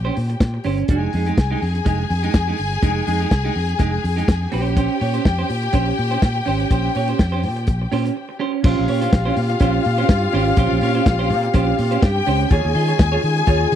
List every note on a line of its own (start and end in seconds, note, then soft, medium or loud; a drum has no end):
0.00 0.61 G4 medium
0.00 0.61 G5 medium
0.05 0.15 C#4 medium
0.05 0.15 G4 medium
0.05 0.16 C5 medium
0.16 0.34 A#2 loud
0.16 muted clean electric guitar stroke soft
0.16 open hi-hat medium
0.30 muted clean electric guitar stroke soft
0.30 closed hi-hat medium
0.40 0.58 A#2 medium
0.40 muted clean electric guitar stroke soft
0.40 kick loud
0.40 snare loud
0.40 closed hi-hat medium
0.54 muted clean electric guitar stroke soft
0.64 0.82 G1 medium
0.64 0.85 C#4 medium
0.64 0.78 G4 medium
0.64 0.77 C5 medium
0.64 open hi-hat medium
0.78 muted clean electric guitar stroke soft
0.78 closed hi-hat soft
0.88 1.06 F1 loud
0.88 1.09 G#3 medium
0.88 1.10 D#4 medium
0.88 1.10 G4 medium
0.88 4.49 G#4 medium
0.88 4.48 G#5 medium
0.88 kick loud
0.88 closed hi-hat medium
1.13 1.31 F2 medium
1.13 1.27 G#3 medium
1.13 1.26 D#4 medium
1.13 1.26 G#4 medium
1.13 open hi-hat medium
1.26 1.36 G#3 medium
1.26 1.37 D#4 medium
1.26 1.37 G4 medium
1.26 closed hi-hat soft
1.37 1.55 C2 medium
1.37 muted clean electric guitar stroke soft
1.37 kick loud
1.37 snare loud
1.37 closed hi-hat medium
1.51 1.60 G#3 medium
1.51 1.61 D#4 medium
1.51 1.62 G4 medium
1.61 1.79 F2 medium
1.61 muted clean electric guitar stroke soft
1.61 open hi-hat medium
1.74 muted clean electric guitar stroke soft
1.74 closed hi-hat soft
1.85 2.03 F1 medium
1.85 2.05 G#3 medium
1.85 1.99 D#4 medium
1.85 1.98 G4 medium
1.85 kick loud
1.85 closed hi-hat medium
1.99 muted clean electric guitar stroke medium
2.10 2.27 F2 loud
2.10 muted clean electric guitar stroke soft
2.10 open hi-hat medium
2.23 2.33 G#3 soft
2.23 2.34 D#4 medium
2.23 2.34 G4 medium
2.23 closed hi-hat medium
2.34 2.52 F2 medium
2.34 muted clean electric guitar stroke soft
2.34 kick loud
2.34 snare loud
2.34 closed hi-hat medium
2.48 2.57 G#3 medium
2.48 2.58 D#4 medium
2.48 2.58 G4 medium
2.58 2.76 G1 medium
2.58 muted clean electric guitar stroke soft
2.58 open hi-hat medium
2.72 muted clean electric guitar stroke soft
2.72 closed hi-hat soft
2.82 3.00 F1 loud
2.82 3.03 G#3 medium
2.82 3.03 D#4 medium
2.82 3.04 G4 medium
2.82 kick loud
2.82 closed hi-hat medium
3.07 3.25 F2 medium
3.07 3.21 G#3 medium
3.07 3.20 D#4 medium
3.07 3.20 G#4 medium
3.07 open hi-hat medium
3.20 3.29 G#3 medium
3.20 3.30 D#4 medium
3.20 3.30 G4 medium
3.20 closed hi-hat soft
3.30 3.49 C2 medium
3.30 muted clean electric guitar stroke soft
3.30 kick medium
3.30 snare loud
3.30 closed hi-hat soft
3.44 3.54 G#3 medium
3.44 3.55 D#4 medium
3.44 3.55 G4 medium
3.55 3.73 F2 medium
3.55 muted clean electric guitar stroke soft
3.55 open hi-hat medium
3.69 muted clean electric guitar stroke soft
3.69 closed hi-hat soft
3.79 3.97 F1 medium
3.79 3.99 G#3 medium
3.79 3.92 D#4 medium
3.79 3.91 G4 medium
3.79 kick loud
3.79 closed hi-hat medium
3.93 muted clean electric guitar stroke soft
4.03 4.21 F2 medium
4.03 muted clean electric guitar stroke soft
4.03 open hi-hat medium
4.16 4.26 G#3 medium
4.16 4.27 D#4 medium
4.16 4.27 G4 medium
4.16 closed hi-hat medium
4.27 4.46 F2 loud
4.27 muted clean electric guitar stroke soft
4.27 kick loud
4.27 snare loud
4.27 closed hi-hat medium
4.41 muted clean electric guitar stroke soft
4.52 4.87 A#1 medium
4.52 4.73 C#4 medium
4.52 8.36 G4 medium
4.52 4.65 G4 medium
4.52 4.64 C5 medium
4.52 8.36 G5 medium
4.52 open hi-hat medium
4.65 muted clean electric guitar stroke medium
4.65 closed hi-hat soft
4.76 4.96 C#4 medium
4.76 4.97 G4 medium
4.76 4.97 C5 medium
4.76 kick loud
4.76 closed hi-hat medium
5.00 5.18 A#2 medium
5.00 5.14 C#4 medium
5.00 5.13 G4 medium
5.00 5.13 C#5 medium
5.00 open hi-hat medium
5.14 5.24 C#4 medium
5.14 5.24 G4 medium
5.14 5.25 C5 medium
5.14 closed hi-hat soft
5.25 5.43 F2 loud
5.25 muted clean electric guitar stroke soft
5.25 kick loud
5.25 snare loud
5.25 closed hi-hat soft
5.39 5.48 C#4 medium
5.39 5.49 G4 medium
5.39 5.49 C5 medium
5.49 5.67 A#2 loud
5.49 muted clean electric guitar stroke soft
5.49 open hi-hat medium
5.63 muted clean electric guitar stroke soft
5.63 closed hi-hat soft
5.73 5.91 A#1 loud
5.73 5.93 C#4 medium
5.73 5.87 G4 medium
5.73 5.86 C5 medium
5.73 kick loud
5.73 closed hi-hat medium
5.87 muted clean electric guitar stroke soft
5.98 6.16 A#2 loud
5.98 muted clean electric guitar stroke soft
5.98 open hi-hat medium
6.11 6.20 C#4 soft
6.11 6.21 G4 medium
6.11 6.22 C5 medium
6.11 closed hi-hat medium
6.21 6.40 A#2 medium
6.21 muted clean electric guitar stroke soft
6.21 kick loud
6.21 snare loud
6.21 closed hi-hat medium
6.35 muted clean electric guitar stroke soft
6.46 6.64 G#1 medium
6.46 6.66 C#4 medium
6.46 6.60 G4 medium
6.46 6.58 C5 medium
6.46 open hi-hat medium
6.60 muted clean electric guitar stroke soft
6.60 closed hi-hat soft
6.70 6.88 A#1 loud
6.70 6.90 C#4 medium
6.70 6.91 G4 medium
6.70 6.91 C5 medium
6.70 kick loud
6.70 closed hi-hat medium
6.95 7.13 A#2 medium
6.95 7.09 C#4 medium
6.95 7.08 G4 medium
6.95 7.08 C#5 medium
6.95 open hi-hat medium
7.08 7.18 C#4 medium
7.08 7.19 G4 medium
7.08 7.19 C5 medium
7.08 closed hi-hat medium
7.19 7.45 F2 medium
7.19 muted clean electric guitar stroke soft
7.19 kick medium
7.19 snare loud
7.19 closed hi-hat medium
7.32 7.42 C#4 medium
7.32 7.43 G4 medium
7.32 7.43 C5 medium
7.43 7.70 A#2 medium
7.43 muted clean electric guitar stroke soft
7.43 open hi-hat medium
7.56 muted clean electric guitar stroke soft
7.56 closed hi-hat soft
7.67 7.85 A#1 loud
7.67 kick loud
7.67 closed hi-hat medium
7.82 muted clean electric guitar stroke soft
7.92 8.09 A#2 loud
7.92 8.12 C#4 medium
7.92 8.05 G4 medium
7.92 8.04 C5 loud
7.92 open hi-hat medium
8.05 muted clean electric guitar stroke soft
8.05 closed hi-hat medium
8.15 muted clean electric guitar stroke soft
8.29 muted clean electric guitar stroke soft
8.39 8.60 C#4 medium
8.39 8.53 G4 medium
8.39 8.52 C5 medium
8.53 muted clean electric guitar stroke soft
8.64 8.74 A#1 loud
8.64 13.75 C#3 medium
8.64 12.47 C4 medium
8.64 8.84 C#4 medium
8.64 11.99 F4 medium
8.64 12.47 G4 medium
8.64 8.84 G4 medium
8.64 8.85 C5 medium
8.64 11.99 F5 medium
8.64 kick loud
8.64 crash loud
8.79 8.86 A#1 loud
8.88 9.06 A#2 loud
8.88 9.02 C#4 medium
8.88 9.01 G4 medium
8.88 9.01 C#5 medium
8.88 open hi-hat medium
9.01 9.11 C#4 medium
9.01 9.11 G4 medium
9.01 9.12 C5 medium
9.01 closed hi-hat medium
9.12 9.30 A#1 loud
9.12 muted clean electric guitar stroke soft
9.12 kick loud
9.12 snare loud
9.12 closed hi-hat medium
9.25 9.35 C#4 medium
9.25 9.36 G4 medium
9.25 9.37 C5 medium
9.37 9.54 A#2 loud
9.37 muted clean electric guitar stroke soft
9.37 open hi-hat medium
9.49 muted clean electric guitar stroke soft
9.49 closed hi-hat medium
9.60 9.78 A#1 loud
9.60 9.81 C#4 medium
9.60 9.75 G4 medium
9.60 9.73 C5 loud
9.60 kick loud
9.60 closed hi-hat medium
9.74 muted clean electric guitar stroke medium
9.85 10.03 A#2 loud
9.85 muted clean electric guitar stroke soft
9.85 open hi-hat medium
9.98 10.08 C#4 medium
9.98 10.08 G4 medium
9.98 10.09 C5 medium
9.98 closed hi-hat medium
10.09 10.26 G2 loud
10.09 muted clean electric guitar stroke soft
10.09 kick loud
10.09 snare loud
10.09 closed hi-hat medium
10.23 muted clean electric guitar stroke soft
10.32 10.51 G#1 medium
10.32 10.53 C#4 medium
10.32 10.47 G4 medium
10.32 10.46 C5 loud
10.32 open hi-hat medium
10.47 muted clean electric guitar stroke soft
10.47 closed hi-hat soft
10.57 10.67 A#1 loud
10.57 10.78 C#4 medium
10.57 10.78 G4 loud
10.57 10.78 C5 loud
10.57 kick loud
10.57 closed hi-hat medium
10.71 10.79 A#1 loud
10.81 10.99 A#2 loud
10.81 10.96 C#4 medium
10.81 10.95 G4 medium
10.81 10.94 C#5 medium
10.81 open hi-hat medium
10.95 11.05 C#4 medium
10.95 11.05 G4 medium
10.95 11.06 C5 medium
10.95 closed hi-hat medium
11.06 11.32 A#1 medium
11.06 muted clean electric guitar stroke medium
11.06 kick loud
11.06 snare loud
11.06 closed hi-hat medium
11.19 11.29 C#4 medium
11.19 11.30 G4 medium
11.19 11.30 C5 medium
11.30 11.47 A#2 loud
11.30 muted clean electric guitar stroke medium
11.30 open hi-hat medium
11.43 muted clean electric guitar stroke soft
11.43 closed hi-hat soft
11.54 11.72 A#1 loud
11.54 11.74 C#4 medium
11.54 11.67 G4 medium
11.54 11.66 C5 medium
11.54 kick loud
11.54 closed hi-hat medium
11.67 muted clean electric guitar stroke soft
11.78 11.96 A#2 loud
11.78 muted clean electric guitar stroke soft
11.78 open hi-hat medium
11.91 12.01 C#4 medium
11.91 12.02 G4 medium
11.91 12.02 C5 medium
11.91 closed hi-hat medium
12.02 12.20 G2 loud
12.02 12.50 G4 medium
12.02 12.50 G5 loud
12.02 muted clean electric guitar stroke soft
12.02 kick loud
12.02 snare loud
12.02 closed hi-hat medium
12.16 muted clean electric guitar stroke soft
12.26 12.44 C#2 medium
12.26 12.47 C#4 medium
12.26 12.41 G4 medium
12.26 12.40 C5 medium
12.26 open hi-hat medium
12.41 muted clean electric guitar stroke medium
12.41 closed hi-hat soft
12.51 12.61 D#2 loud
12.51 13.75 G#3 medium
12.51 12.71 F4 medium
12.51 13.75 F4 medium
12.51 13.75 G#4 medium
12.51 12.71 G#4 loud
12.51 12.72 C#5 loud
12.51 13.75 G#5 loud
12.51 kick loud
12.51 closed hi-hat medium
12.65 12.72 D#2 loud
12.75 12.92 D#3 loud
12.75 12.89 F4 medium
12.75 12.88 G#4 medium
12.75 12.88 D#5 medium
12.75 open hi-hat medium
12.88 12.98 F4 medium
12.88 12.98 G#4 medium
12.88 12.99 C#5 medium
12.88 closed hi-hat medium
12.99 13.17 D#2 loud
12.99 muted clean electric guitar stroke soft
12.99 kick loud
12.99 snare loud
12.99 closed hi-hat medium
13.12 13.22 F4 medium
13.12 13.22 G#4 medium
13.12 13.23 C#5 medium
13.23 13.41 D#3 loud
13.23 muted clean electric guitar stroke soft
13.23 open hi-hat medium
13.36 muted clean electric guitar stroke soft
13.36 closed hi-hat soft
13.46 13.65 D#2 loud
13.46 13.67 F4 medium
13.46 13.61 G#4 medium
13.46 13.59 C#5 medium
13.46 kick loud
13.46 closed hi-hat medium
13.61 muted clean electric guitar stroke soft
13.71 13.75 D#3 loud
13.71 muted clean electric guitar stroke soft
13.71 open hi-hat medium